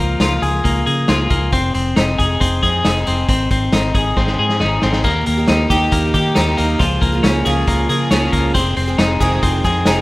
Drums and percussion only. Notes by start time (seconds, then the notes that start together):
0.20 snare, closed hi-hat
0.43 closed hi-hat
0.65 kick, closed hi-hat
0.87 closed hi-hat
1.08 snare, closed hi-hat
1.30 kick, closed hi-hat
1.52 kick, closed hi-hat
1.75 closed hi-hat
1.96 snare, closed hi-hat
2.19 kick, closed hi-hat
2.41 kick, closed hi-hat
2.63 kick, snare, closed hi-hat
2.85 snare, closed hi-hat
3.07 closed hi-hat
3.29 kick, closed hi-hat
3.51 kick, closed hi-hat
3.73 snare, closed hi-hat
3.95 kick, closed hi-hat
4.16 kick, snare
4.27 snare
4.49 snare
4.60 snare
4.82 snare
4.93 snare
5.04 kick, splash
5.26 closed hi-hat
5.48 snare, closed hi-hat
5.70 kick, closed hi-hat
5.92 kick, closed hi-hat
6.14 kick, closed hi-hat
6.35 snare, closed hi-hat
6.58 closed hi-hat
6.80 kick, closed hi-hat
7.02 kick, closed hi-hat
7.24 snare, closed hi-hat
7.46 closed hi-hat
7.67 kick, closed hi-hat
7.90 closed hi-hat
8.11 snare, closed hi-hat
8.33 kick, closed hi-hat
8.55 kick, closed hi-hat
8.77 closed hi-hat
8.99 snare, closed hi-hat
9.21 kick, closed hi-hat
9.43 kick, closed hi-hat
9.64 kick, snare, closed hi-hat
9.85 snare, closed hi-hat